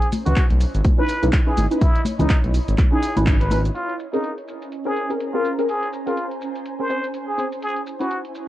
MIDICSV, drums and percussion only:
0, 0, Header, 1, 2, 480
1, 0, Start_track
1, 0, Key_signature, -5, "minor"
1, 0, Tempo, 483871
1, 1802, Time_signature, 4, 2, 24, 8
1, 8414, End_track
2, 0, Start_track
2, 0, Title_t, "Drums"
2, 20, Note_on_c, 9, 42, 38
2, 119, Note_off_c, 9, 42, 0
2, 120, Note_on_c, 9, 46, 100
2, 120, Note_on_c, 9, 82, 84
2, 124, Note_on_c, 9, 63, 80
2, 219, Note_off_c, 9, 46, 0
2, 219, Note_off_c, 9, 82, 0
2, 223, Note_off_c, 9, 63, 0
2, 260, Note_on_c, 9, 42, 53
2, 260, Note_on_c, 9, 82, 46
2, 265, Note_on_c, 9, 64, 88
2, 357, Note_on_c, 9, 39, 111
2, 360, Note_off_c, 9, 42, 0
2, 360, Note_off_c, 9, 82, 0
2, 360, Note_on_c, 9, 42, 63
2, 360, Note_on_c, 9, 82, 34
2, 362, Note_on_c, 9, 36, 114
2, 364, Note_off_c, 9, 64, 0
2, 456, Note_off_c, 9, 39, 0
2, 459, Note_off_c, 9, 42, 0
2, 459, Note_off_c, 9, 82, 0
2, 461, Note_off_c, 9, 36, 0
2, 500, Note_on_c, 9, 42, 37
2, 505, Note_on_c, 9, 63, 61
2, 599, Note_off_c, 9, 42, 0
2, 601, Note_on_c, 9, 46, 96
2, 601, Note_on_c, 9, 82, 81
2, 604, Note_off_c, 9, 63, 0
2, 700, Note_off_c, 9, 46, 0
2, 700, Note_off_c, 9, 82, 0
2, 741, Note_on_c, 9, 42, 54
2, 741, Note_on_c, 9, 82, 46
2, 840, Note_off_c, 9, 42, 0
2, 840, Note_off_c, 9, 82, 0
2, 840, Note_on_c, 9, 42, 69
2, 841, Note_on_c, 9, 82, 34
2, 842, Note_on_c, 9, 36, 109
2, 842, Note_on_c, 9, 63, 90
2, 940, Note_off_c, 9, 42, 0
2, 940, Note_off_c, 9, 82, 0
2, 941, Note_off_c, 9, 36, 0
2, 941, Note_off_c, 9, 63, 0
2, 1080, Note_on_c, 9, 46, 95
2, 1080, Note_on_c, 9, 82, 76
2, 1179, Note_off_c, 9, 46, 0
2, 1179, Note_off_c, 9, 82, 0
2, 1221, Note_on_c, 9, 42, 52
2, 1221, Note_on_c, 9, 82, 44
2, 1230, Note_on_c, 9, 63, 56
2, 1318, Note_on_c, 9, 39, 111
2, 1320, Note_off_c, 9, 42, 0
2, 1320, Note_off_c, 9, 82, 0
2, 1322, Note_on_c, 9, 36, 112
2, 1322, Note_on_c, 9, 42, 65
2, 1322, Note_on_c, 9, 82, 35
2, 1329, Note_off_c, 9, 63, 0
2, 1418, Note_off_c, 9, 39, 0
2, 1421, Note_off_c, 9, 36, 0
2, 1421, Note_off_c, 9, 42, 0
2, 1421, Note_off_c, 9, 82, 0
2, 1561, Note_on_c, 9, 46, 102
2, 1561, Note_on_c, 9, 82, 84
2, 1564, Note_on_c, 9, 63, 84
2, 1660, Note_off_c, 9, 46, 0
2, 1660, Note_off_c, 9, 82, 0
2, 1663, Note_off_c, 9, 63, 0
2, 1701, Note_on_c, 9, 42, 52
2, 1702, Note_on_c, 9, 82, 47
2, 1801, Note_off_c, 9, 42, 0
2, 1801, Note_off_c, 9, 82, 0
2, 1802, Note_on_c, 9, 36, 116
2, 1802, Note_on_c, 9, 42, 66
2, 1802, Note_on_c, 9, 82, 34
2, 1901, Note_off_c, 9, 36, 0
2, 1901, Note_off_c, 9, 42, 0
2, 1902, Note_off_c, 9, 82, 0
2, 1942, Note_on_c, 9, 42, 39
2, 2034, Note_on_c, 9, 63, 91
2, 2041, Note_off_c, 9, 42, 0
2, 2041, Note_on_c, 9, 46, 105
2, 2041, Note_on_c, 9, 82, 80
2, 2133, Note_off_c, 9, 63, 0
2, 2140, Note_off_c, 9, 46, 0
2, 2140, Note_off_c, 9, 82, 0
2, 2176, Note_on_c, 9, 64, 86
2, 2182, Note_on_c, 9, 42, 55
2, 2182, Note_on_c, 9, 82, 49
2, 2275, Note_off_c, 9, 64, 0
2, 2278, Note_on_c, 9, 39, 115
2, 2281, Note_off_c, 9, 42, 0
2, 2281, Note_off_c, 9, 82, 0
2, 2282, Note_on_c, 9, 36, 116
2, 2282, Note_on_c, 9, 42, 66
2, 2282, Note_on_c, 9, 82, 33
2, 2377, Note_off_c, 9, 39, 0
2, 2381, Note_off_c, 9, 36, 0
2, 2381, Note_off_c, 9, 42, 0
2, 2381, Note_off_c, 9, 82, 0
2, 2421, Note_on_c, 9, 42, 36
2, 2424, Note_on_c, 9, 63, 60
2, 2521, Note_off_c, 9, 42, 0
2, 2522, Note_on_c, 9, 46, 96
2, 2522, Note_on_c, 9, 82, 77
2, 2523, Note_off_c, 9, 63, 0
2, 2621, Note_off_c, 9, 46, 0
2, 2621, Note_off_c, 9, 82, 0
2, 2662, Note_on_c, 9, 42, 55
2, 2662, Note_on_c, 9, 82, 47
2, 2758, Note_on_c, 9, 39, 61
2, 2758, Note_on_c, 9, 63, 82
2, 2761, Note_off_c, 9, 42, 0
2, 2761, Note_off_c, 9, 82, 0
2, 2762, Note_on_c, 9, 36, 111
2, 2762, Note_on_c, 9, 42, 68
2, 2762, Note_on_c, 9, 82, 34
2, 2858, Note_off_c, 9, 39, 0
2, 2858, Note_off_c, 9, 63, 0
2, 2861, Note_off_c, 9, 36, 0
2, 2861, Note_off_c, 9, 42, 0
2, 2861, Note_off_c, 9, 82, 0
2, 3002, Note_on_c, 9, 46, 100
2, 3002, Note_on_c, 9, 82, 75
2, 3101, Note_off_c, 9, 46, 0
2, 3101, Note_off_c, 9, 82, 0
2, 3139, Note_on_c, 9, 63, 70
2, 3142, Note_on_c, 9, 42, 56
2, 3142, Note_on_c, 9, 82, 46
2, 3239, Note_off_c, 9, 63, 0
2, 3239, Note_on_c, 9, 39, 115
2, 3241, Note_off_c, 9, 42, 0
2, 3241, Note_off_c, 9, 82, 0
2, 3242, Note_on_c, 9, 36, 110
2, 3242, Note_on_c, 9, 42, 69
2, 3243, Note_on_c, 9, 82, 34
2, 3338, Note_off_c, 9, 39, 0
2, 3341, Note_off_c, 9, 36, 0
2, 3342, Note_off_c, 9, 42, 0
2, 3342, Note_off_c, 9, 82, 0
2, 3383, Note_on_c, 9, 42, 40
2, 3474, Note_on_c, 9, 63, 80
2, 3482, Note_off_c, 9, 42, 0
2, 3483, Note_on_c, 9, 46, 104
2, 3483, Note_on_c, 9, 82, 83
2, 3573, Note_off_c, 9, 63, 0
2, 3582, Note_off_c, 9, 46, 0
2, 3582, Note_off_c, 9, 82, 0
2, 3622, Note_on_c, 9, 42, 53
2, 3623, Note_on_c, 9, 82, 46
2, 3722, Note_off_c, 9, 42, 0
2, 3722, Note_off_c, 9, 82, 0
2, 3723, Note_on_c, 9, 42, 57
2, 3723, Note_on_c, 9, 82, 30
2, 3822, Note_off_c, 9, 42, 0
2, 3822, Note_off_c, 9, 82, 0
2, 3862, Note_on_c, 9, 42, 35
2, 3961, Note_off_c, 9, 42, 0
2, 3963, Note_on_c, 9, 82, 70
2, 4062, Note_off_c, 9, 82, 0
2, 4102, Note_on_c, 9, 42, 50
2, 4102, Note_on_c, 9, 82, 39
2, 4201, Note_off_c, 9, 42, 0
2, 4202, Note_off_c, 9, 82, 0
2, 4203, Note_on_c, 9, 42, 61
2, 4203, Note_on_c, 9, 82, 28
2, 4302, Note_off_c, 9, 42, 0
2, 4303, Note_off_c, 9, 82, 0
2, 4343, Note_on_c, 9, 42, 32
2, 4442, Note_off_c, 9, 42, 0
2, 4443, Note_on_c, 9, 82, 68
2, 4543, Note_off_c, 9, 82, 0
2, 4583, Note_on_c, 9, 42, 47
2, 4583, Note_on_c, 9, 82, 40
2, 4682, Note_off_c, 9, 42, 0
2, 4682, Note_off_c, 9, 82, 0
2, 4683, Note_on_c, 9, 42, 59
2, 4683, Note_on_c, 9, 82, 29
2, 4782, Note_off_c, 9, 42, 0
2, 4783, Note_off_c, 9, 82, 0
2, 4923, Note_on_c, 9, 82, 67
2, 5022, Note_off_c, 9, 82, 0
2, 5063, Note_on_c, 9, 42, 50
2, 5063, Note_on_c, 9, 82, 40
2, 5162, Note_off_c, 9, 42, 0
2, 5162, Note_off_c, 9, 82, 0
2, 5163, Note_on_c, 9, 42, 63
2, 5163, Note_on_c, 9, 82, 30
2, 5262, Note_off_c, 9, 42, 0
2, 5263, Note_off_c, 9, 82, 0
2, 5403, Note_on_c, 9, 82, 73
2, 5502, Note_off_c, 9, 82, 0
2, 5543, Note_on_c, 9, 42, 48
2, 5543, Note_on_c, 9, 82, 39
2, 5642, Note_off_c, 9, 42, 0
2, 5642, Note_off_c, 9, 82, 0
2, 5642, Note_on_c, 9, 42, 61
2, 5642, Note_on_c, 9, 82, 28
2, 5742, Note_off_c, 9, 42, 0
2, 5742, Note_off_c, 9, 82, 0
2, 5782, Note_on_c, 9, 42, 34
2, 5881, Note_off_c, 9, 42, 0
2, 5882, Note_on_c, 9, 82, 71
2, 5981, Note_off_c, 9, 82, 0
2, 6021, Note_on_c, 9, 42, 47
2, 6021, Note_on_c, 9, 82, 40
2, 6120, Note_off_c, 9, 42, 0
2, 6121, Note_off_c, 9, 82, 0
2, 6122, Note_on_c, 9, 42, 58
2, 6122, Note_on_c, 9, 82, 27
2, 6221, Note_off_c, 9, 42, 0
2, 6222, Note_off_c, 9, 82, 0
2, 6262, Note_on_c, 9, 42, 31
2, 6361, Note_off_c, 9, 42, 0
2, 6362, Note_on_c, 9, 82, 70
2, 6461, Note_off_c, 9, 82, 0
2, 6501, Note_on_c, 9, 42, 48
2, 6501, Note_on_c, 9, 82, 40
2, 6600, Note_off_c, 9, 42, 0
2, 6600, Note_off_c, 9, 82, 0
2, 6601, Note_on_c, 9, 42, 60
2, 6602, Note_on_c, 9, 82, 29
2, 6701, Note_off_c, 9, 42, 0
2, 6701, Note_off_c, 9, 82, 0
2, 6841, Note_on_c, 9, 82, 66
2, 6941, Note_off_c, 9, 82, 0
2, 6981, Note_on_c, 9, 42, 48
2, 6981, Note_on_c, 9, 82, 40
2, 7080, Note_off_c, 9, 42, 0
2, 7080, Note_off_c, 9, 82, 0
2, 7081, Note_on_c, 9, 42, 62
2, 7081, Note_on_c, 9, 82, 30
2, 7180, Note_off_c, 9, 42, 0
2, 7180, Note_off_c, 9, 82, 0
2, 7322, Note_on_c, 9, 82, 70
2, 7421, Note_off_c, 9, 82, 0
2, 7462, Note_on_c, 9, 42, 45
2, 7462, Note_on_c, 9, 82, 37
2, 7561, Note_off_c, 9, 42, 0
2, 7561, Note_off_c, 9, 82, 0
2, 7562, Note_on_c, 9, 42, 57
2, 7562, Note_on_c, 9, 82, 28
2, 7661, Note_off_c, 9, 42, 0
2, 7661, Note_off_c, 9, 82, 0
2, 7701, Note_on_c, 9, 42, 33
2, 7800, Note_off_c, 9, 42, 0
2, 7802, Note_on_c, 9, 82, 69
2, 7901, Note_off_c, 9, 82, 0
2, 7942, Note_on_c, 9, 42, 47
2, 7942, Note_on_c, 9, 82, 39
2, 8041, Note_off_c, 9, 42, 0
2, 8041, Note_off_c, 9, 82, 0
2, 8043, Note_on_c, 9, 42, 57
2, 8043, Note_on_c, 9, 82, 28
2, 8142, Note_off_c, 9, 42, 0
2, 8143, Note_off_c, 9, 82, 0
2, 8182, Note_on_c, 9, 42, 31
2, 8282, Note_off_c, 9, 42, 0
2, 8282, Note_on_c, 9, 82, 69
2, 8381, Note_off_c, 9, 82, 0
2, 8414, End_track
0, 0, End_of_file